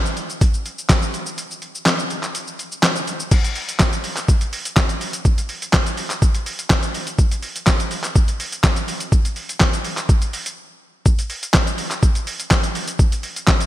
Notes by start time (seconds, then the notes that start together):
0.06 shaker
0.17 closed hi-hat, shaker
0.30 shaker
0.41 kick, closed hi-hat, shaker
0.54 shaker
0.66 closed hi-hat, shaker
0.78 shaker
0.89 kick, snare, clap, closed hi-hat, shaker
1.02 shaker
1.14 closed hi-hat, shaker
1.26 shaker
1.38 closed hi-hat, shaker
1.51 shaker
1.62 closed hi-hat, shaker
1.75 shaker
1.86 snare, clap, closed hi-hat, shaker
1.99 shaker
2.10 closed hi-hat, shaker
2.23 clap, shaker
2.35 closed hi-hat, shaker
2.47 shaker
2.59 closed hi-hat, shaker
2.72 shaker
2.83 snare, clap, closed hi-hat, shaker
2.96 shaker
3.07 closed hi-hat, shaker
3.20 shaker
3.31 kick, crash, shaker
3.44 closed hi-hat, shaker
3.55 open hi-hat, shaker
3.69 closed hi-hat, shaker
3.79 kick, snare, clap, shaker
3.93 closed hi-hat, shaker
4.04 open hi-hat, shaker
4.17 clap, closed hi-hat, shaker
4.28 kick, shaker
4.41 closed hi-hat, shaker
4.53 open hi-hat, shaker
4.65 closed hi-hat, shaker
4.76 kick, snare, clap, shaker
4.89 closed hi-hat, shaker
5.01 open hi-hat, shaker
5.13 closed hi-hat, shaker
5.25 kick, shaker
5.38 closed hi-hat, shaker
5.49 open hi-hat, shaker
5.62 closed hi-hat, shaker
5.73 kick, snare, clap, shaker
5.86 closed hi-hat, shaker
5.97 open hi-hat, shaker
6.10 clap, closed hi-hat, shaker
6.22 kick, shaker
6.34 closed hi-hat, shaker
6.46 open hi-hat, shaker
6.59 closed hi-hat, shaker
6.70 kick, snare, clap, shaker
6.83 closed hi-hat, shaker
6.94 open hi-hat, shaker
7.07 closed hi-hat, shaker
7.18 kick, shaker
7.31 closed hi-hat, shaker
7.42 open hi-hat, shaker
7.56 closed hi-hat, shaker
7.66 kick, snare, clap, shaker
7.80 closed hi-hat, shaker
7.91 open hi-hat, shaker
8.04 clap, closed hi-hat, shaker
8.15 kick, shaker
8.28 closed hi-hat, shaker
8.40 open hi-hat, shaker
8.52 closed hi-hat, shaker
8.63 kick, snare, clap, shaker
8.76 closed hi-hat, shaker
8.88 open hi-hat, shaker
9.00 closed hi-hat, shaker
9.12 kick, shaker
9.25 closed hi-hat, shaker
9.36 open hi-hat, shaker
9.49 closed hi-hat, shaker
9.60 kick, snare, clap, shaker
9.73 closed hi-hat, shaker
9.84 open hi-hat, shaker
9.97 clap, closed hi-hat, shaker
10.09 kick, shaker
10.22 closed hi-hat, shaker
10.33 open hi-hat, shaker
10.46 closed hi-hat, shaker
11.06 kick, shaker
11.19 closed hi-hat, shaker
11.30 open hi-hat, shaker
11.43 closed hi-hat, shaker
11.54 kick, snare, clap, shaker
11.67 closed hi-hat, shaker
11.78 open hi-hat, shaker
11.91 clap, closed hi-hat, shaker
12.03 kick, shaker
12.15 closed hi-hat, shaker
12.27 open hi-hat, shaker
12.40 closed hi-hat, shaker
12.51 kick, snare, clap, shaker
12.63 closed hi-hat, shaker
12.75 open hi-hat, shaker
12.88 closed hi-hat, shaker
12.99 kick, shaker
13.12 closed hi-hat, shaker
13.23 open hi-hat, shaker
13.36 closed hi-hat, shaker
13.47 kick, snare, clap, shaker
13.61 closed hi-hat, shaker